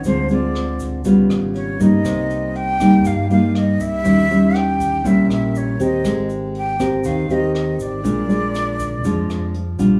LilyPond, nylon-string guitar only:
\new Staff \with { instrumentName = "Nylon-string guitar" } { \time 4/4 \key ees \major \tempo 4 = 120 << { <aes c' f'>8 <aes c' f'>4. <g ces' f'>4. <g bes ees'>8~ | <g bes ees'>4. <g bes ees'>4 <g bes ees'>4. | <g des' fes'>8 <g des' fes'>4. <g des' fes'>4. <c' g' bes'>8~ | <c' g' bes'>4. <c' g' bes'>4 <c' g' bes'>4. |
<aes d' f'>8 <aes d' f'>4. <aes d' f'>4 r8 <g d' f'>8 | } \\ { d2 des2 | c2 g,2 | ees2 bes,2 | aes2 ees2 |
bes,2 f2 | } >> }